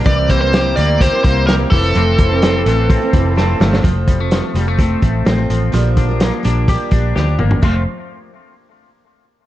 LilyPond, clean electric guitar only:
\new Staff \with { instrumentName = "Clean electric guitar" } { \time 4/4 \key f \major \tempo 4 = 127 <e g'>8 bes8 g'8 bes8 g'8 bes8 g'8 e8 | <e c'>8 e8 c'8 e8 c'8 e8 c'8 a8 | f8 g16 a16 f8 g16 a16 c'8 a8 c'8 f8 | f8 d'8 bes8 d'8 g'8 d'8 g'8 bes8 |
<a c' f'>8 r2. r8 | }